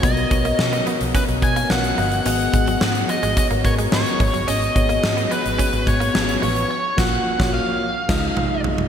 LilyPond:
<<
  \new Staff \with { instrumentName = "Lead electric guitar" } { \time 4/4 \key cis \mixolydian \tempo 4 = 108 dis''4. r8 b'8 gis''8 fis''4 | fis''4. dis''8 dis''8 cis''8 cis''4 | dis''4. b'4 cis''4 cis''8 | cis''8 fis''4 eis''2 r8 | }
  \new Staff \with { instrumentName = "Synth keys" } { \time 4/4 \key cis \mixolydian << { <b fis' ais' dis''>8 <b fis' ais' cis''>8 <b fis' ais' eis''>8 <b fis' ais' dis''>8 <b fis' ais' dis''>8 <b fis' ais' cis''>8 <b fis' ais' eis''>8 <b fis' ais' dis''>8 | <b fis' gis' dis''>8 <b fis' gis' fis''>8 <b fis' gis' dis''>8 <b fis' gis' dis''>8 <b fis' gis' cis''>8 <b fis' gis' ais'>8 <b fis' gis' dis''>8 <b fis' gis' cis''>8~ | <b fis' gis' cis''>16 r16 <b fis' gis' cis''>8 <b fis' gis' cis''>8 <b fis' gis' cis''>8 <b fis' gis' cis''>8 <b fis' gis' cis''>8 <b fis' gis' b'>8 <b fis' gis' cis''>8 | r8 <ais eis' fis'>8 r16 <ais eis' fis' cis''>8 r8. <gis dis' eis' dis''>8 r4 | } \\ { b,4. r2 r8 | gis,4. r2 gis,8~ | gis,4 r2. | r1 | } >> }
  \new Staff \with { instrumentName = "Clean electric guitar" } { \time 4/4 \key cis \mixolydian b16 r8 ais16 r16 b16 b16 r16 cis'16 r8 ais16 r8 ais16 r16 | gis16 r8 fis16 ais16 r8 gis16 r16 ais16 r16 gis16 r8 gis16 fis16 | cis'16 r8 ais16 r16 b16 b16 r16 cis'16 r8 ais16 r8 gis16 r16 | r1 | }
  \new Staff \with { instrumentName = "Fingered electric bass" } { \clef bass \time 4/4 \key cis \mixolydian b,,8 b,,8 b,8 r16 b,,16 r16 b,,16 b,8 b,,8 g,,8 | gis,,8 gis,,8 gis,8 r16 gis,,16 r16 gis,,16 gis,8 gis,16 r16 gis,,16 g,,16 | gis,,8 gis,,8 gis,8 r16 gis,,16 r16 gis,,16 gis,8 gis,,8 a,,8 | r8 ais,,8 r16 ais,,8 r8. cis,8 r4 | }
  \new DrumStaff \with { instrumentName = "Drums" } \drummode { \time 4/4 <hh bd>16 hh16 <hh bd>16 hh16 sn16 hh16 hh16 hh16 <hh bd>16 hh16 <hh bd>16 hh16 sn16 hh16 hho16 hh16 | hh16 hh16 <hh bd>16 hh16 sn16 hh16 hh16 hh16 <hh bd>16 hh16 <hh bd>16 hh16 sn16 hh16 <hho bd>16 hh16 | hh16 hh16 <hh bd>16 hh16 sn16 hh16 hh16 hh16 <hh bd>16 hh16 <hh bd>16 hh16 sn16 hh16 hho16 hh16 | r8 <cymc bd sn>8 r16 <bd sn>8. r8 <cymc bd sn>8 tomfh8 tomfh16 tomfh16 | }
>>